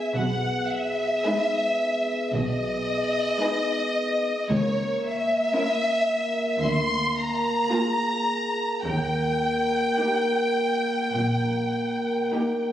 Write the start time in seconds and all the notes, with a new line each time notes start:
Already playing: B3 G#4 E5
0.16 B1 B2 B3 G#4 F#5
0.72 E5
1.26 G#3 D#4 G#4 B4
2.33 B1 B2 D#5
3.42 G#3 D#4 G#4 B4
4.50 C#2 A#3 A#4 C#5
5.06 E5
5.56 A#3 C#4 E4 A#4
6.62 D2 C6
7.18 A#5
7.71 A#3 F4 G#4 A#4
8.84 D#2 A#3 A#4 G5
10.00 A#3 D#4 G4 A#4
11.17 A#1 A#2
12.33 A#3 D#4 G4 A#4